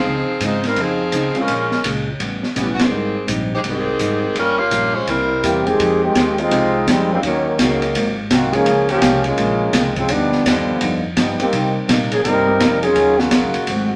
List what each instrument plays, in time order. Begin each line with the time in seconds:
Already playing: saxophone section F3 C4 D#4 G#4
0.05 upright bass C#2, hollow-body jazz guitar C#3 F3 C4 D#4
0.28 muted upright bass stroke
0.40 upright bass G#2, hollow-body jazz guitar C#3 F3 C4 D#4, kick, hi-hat pedal, ride
0.45 saxophone section G#3 D#4 F4 C5
0.64 saxophone section G3 C4 D#4 A#4, snare, ride
0.76 upright bass F2, hollow-body jazz guitar C#3 F3 C4 D#4, saxophone section C4, kick, ride
0.80 saxophone section F3 D#4 G#4
1.12 upright bass C#2, hollow-body jazz guitar C#3 F3 C4 D#4, kick, hi-hat pedal, ride
1.34 grand piano G#3 C4 C#4 F4, muted upright bass stroke, ride
1.39 saxophone section G#3 C#4 F4 A#4
1.48 upright bass A#1, hollow-body jazz guitar A#2 F3 G#3 C#4, kick, ride
1.71 snare
1.84 upright bass C#2, hollow-body jazz guitar A#2 F3 G#3 C#4, kick, hi-hat pedal, ride
2.19 upright bass A1, hollow-body jazz guitar A2 G3 B3 C#4, kick, ride
2.42 muted upright bass stroke, snare
2.55 upright bass B1, hollow-body jazz guitar A2 G3 B3 C#4, saxophone section E3 B3 C#4 G4, grand piano G3 B3 C#4 E4, kick, hi-hat pedal, ride
2.74 saxophone section F#4
2.79 saxophone section D#3 C4 G4 G#4, snare, ride
2.90 upright bass G#1, hollow-body jazz guitar G#2 G3 C4 D#4, grand piano G3 A#3 C4 D#4
3.26 upright bass A#1, hollow-body jazz guitar G#2 G3 C4 D#4, kick, hi-hat pedal, ride
3.54 saxophone section G#3 D#4 G4 C5
3.63 upright bass C2, hollow-body jazz guitar G#2 G3 C4 D#4, kick, ride
3.68 saxophone section D#3 C4 G4 G#4
3.99 upright bass G#1, hollow-body jazz guitar G#2 G3 C4 D#4, kick, hi-hat pedal, ride
4.35 upright bass G1, hollow-body jazz guitar G2 F3 A#3, saxophone section G3 C#4 F4 A#4, kick, ride
4.39 hollow-body jazz guitar C#4
4.58 saxophone section A#3 F4 G4 C#5
4.70 upright bass A#1, hollow-body jazz guitar G2 F3 A#3 C#4, kick, hi-hat pedal, ride
4.94 saxophone section G#3 C#4 F4 C5
5.07 upright bass C2, hollow-body jazz guitar C3 G3 A#3 E4, saxophone section G3 C4 E4 A#4, kick, ride
5.42 upright bass E2, hollow-body jazz guitar C3 G3 A#3 E4, trombone section E3 A#3 C4 G4, kick, hi-hat pedal, ride
5.65 grand piano F2 G#3 C4 D#4 G5, trombone section D#3 C4 G4 G#4, ride
5.78 upright bass F2, hollow-body jazz guitar F3 G#3 D#4 G4, kick, ride
6.04 trombone section D#3 G#3 C4 G4
6.15 upright bass D#2, hollow-body jazz guitar F3 G#3 D#4 G4, kick, snare, hi-hat pedal, ride
6.38 trombone section G#3 C4 D#4 F4, ride
6.50 upright bass C2, hollow-body jazz guitar F3 G#3 D#4 G4, grand piano F3 G#3 C4 D#4 G4, kick, ride
6.87 upright bass F2, hollow-body jazz guitar F3 G#3 D#4 G4, trombone section G3 G#3 C4 D#4, kick, snare, hi-hat pedal, ride
7.10 trombone section D#3 G3 G#3 C4, grand piano F#3 A#3 C#4 D#4 F4
7.22 upright bass D#2, hollow-body jazz guitar D#3 A#3 C#4 F#4, trombone section D#3 F#3 A#3 C#4, kick, ride
7.58 upright bass C#2, trombone section C#3 D#3 F#3 A#3, hollow-body jazz guitar D#3 A#3 C#4 F#4, kick, snare, hi-hat pedal, ride
7.82 ride
7.94 upright bass G#1, hollow-body jazz guitar G#2 F#3 A#3 C4, kick, ride
8.30 upright bass C2, hollow-body jazz guitar G#2 F#3 A#3 C4, trombone section D#3 A#3 C4 F#4, kick, snare, hi-hat pedal, ride
8.52 trombone section F3 A#3 C#4 G#4, grand piano G#3 A#3 C#4 D#4 F4, ride
8.66 upright bass C#2, hollow-body jazz guitar C#3 G#3 A#3 F4, kick, ride
8.89 trombone section F3 A#3 C#4 G4, ride
9.00 upright bass C2, hollow-body jazz guitar C#3 G#3 A#3 F4, grand piano G#3 A#3 C#4 D#4 F4, kick, snare, hi-hat pedal, ride
9.24 trombone section G#3 A#3 C#4 F4, ride
9.37 upright bass A#1, hollow-body jazz guitar C#3 G#3 A#3 F4, kick, ride
9.73 upright bass C2, hollow-body jazz guitar C#3 G#3 A#3 F4, trombone section F3 G#3 C4 D#4, kick, snare, hi-hat pedal, ride
9.96 trombone section C#3 F3 G#3 C4, kick, ride
10.09 upright bass D2, hollow-body jazz guitar G2 F3 B3 D#4, trombone section F3 G3 B3 D4, kick, ride
10.32 snare
10.45 upright bass D#2, hollow-body jazz guitar G2 F3 B3 D#4, trombone section D3 F3 G3 B3, kick, snare, hi-hat pedal, ride
10.80 upright bass F2, hollow-body jazz guitar G2 F3 B3 D#4, kick, ride
11.16 hollow-body jazz guitar G2 F3 B3 D#4, upright bass G2, trombone section F3 G3 B3 D#4, kick, snare, hi-hat pedal, ride
11.38 trombone section D#3 A#3 C4 G4, grand piano G3 A#3 C4 D#4 G4, muted upright bass stroke, ride
11.52 hollow-body jazz guitar C3 G3 A#3 D#4, upright bass C3, kick, ride
11.88 upright bass A#2, hollow-body jazz guitar C3 G3 A#3 D#4, kick, snare, hi-hat pedal, ride
12.11 trombone section F3 A#3 C#4 G#4, ride
12.24 upright bass G2, hollow-body jazz guitar C3 G3 A#3 D#4, trombone section G3 C4 D#4 A#4, kick, ride
12.46 grand piano G3 A#3 C4 D#4 G4
12.59 upright bass F2, hollow-body jazz guitar C3 G3 A#3 D#4, kick, snare, hi-hat pedal, ride
12.82 grand piano F#3 A#3 C#4 D#4 G#4, trombone section F#3 C#4 F4 G#4, ride
12.95 upright bass D#2, hollow-body jazz guitar D#3 F#3 C#4 F4, kick, ride
13.18 trombone section C#3 A#3 F4 F#4, snare
13.31 upright bass A#1, hollow-body jazz guitar D#3 F#3 C#4 F4, kick, snare, hi-hat pedal, ride
13.44 upright bass F#1
13.54 upright bass D#1, ride
13.67 upright bass G#1, hollow-body jazz guitar G#2 F#3 A3, kick, ride
13.71 hollow-body jazz guitar C4